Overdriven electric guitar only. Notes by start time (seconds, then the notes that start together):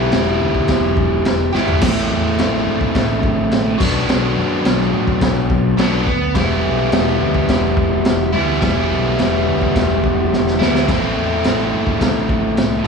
Already playing: E3 B3 E4 G4
1.53 B3 E4 G4
1.57 E3
1.80 A2 E3 A3 C4
1.84 E4
3.78 B2 F#3 B3
3.82 D4
5.77 B2 F#3 B3
5.82 D4
6.35 E3 G3 B3
6.39 E4
8.32 G3 B3 E4
8.37 E3
8.61 E3 G3 B3
8.66 E4
10.59 G3 B3 E4
10.63 E3
10.87 A2 E3 A3 C4
10.92 E4